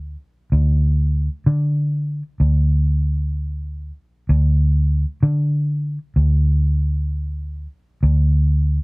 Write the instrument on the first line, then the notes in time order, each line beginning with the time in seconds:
fingered electric bass
Already playing: D2
0.52 D2
1.46 D3
2.40 D2
4.29 D2
5.23 D3
6.16 D2
8.03 D2